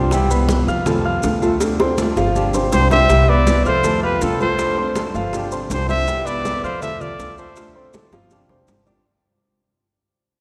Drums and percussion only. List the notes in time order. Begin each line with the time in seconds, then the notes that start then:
0.11 high bongo, high conga, maracas
0.31 high conga, maracas
0.49 high bongo, high conga, maracas
0.67 high bongo, high conga, maracas
0.86 high bongo, high conga, low conga, maracas
1.05 high bongo, high conga
1.23 high bongo, low bongo, high conga, maracas
1.42 high bongo, maracas
1.61 high bongo, high conga, maracas
1.80 high bongo, high conga
1.98 low bongo, high conga, maracas
2.17 high bongo, maracas
2.36 high conga, maracas
2.54 low bongo, high conga, maracas
2.72 low bongo, high conga, maracas
2.91 low bongo, high conga, maracas
3.10 high bongo, high conga, maracas
3.29 high conga
3.47 high bongo, high conga, maracas
3.65 high bongo, high conga, maracas
3.84 high bongo, high conga, low conga, maracas
4.03 high bongo, high conga
4.21 high bongo, low bongo, high conga, maracas
4.40 high bongo, high conga, maracas
4.59 high bongo, high conga, maracas
4.77 high conga
4.95 high bongo, high conga, maracas
5.15 high bongo, maracas
5.33 high bongo, high conga, maracas
5.51 high bongo, high conga, maracas
5.70 high bongo, low bongo, high conga, maracas
5.89 high bongo, high conga, maracas
6.08 high bongo, high conga, maracas
6.27 high conga, maracas
6.45 high bongo, high conga, maracas
6.64 high bongo, high conga, maracas
6.82 high bongo, high conga, low conga, maracas
7.01 high bongo, high conga, low conga, maracas
7.20 high bongo, low bongo, high conga, maracas
7.38 high bongo, maracas
7.56 high bongo, high conga, maracas
7.76 high conga
7.93 high bongo, high conga, maracas
8.12 high bongo, maracas
8.31 high bongo, high conga, maracas
8.49 low bongo, high conga
8.68 low bongo, high conga, maracas
8.86 low bongo, high conga, maracas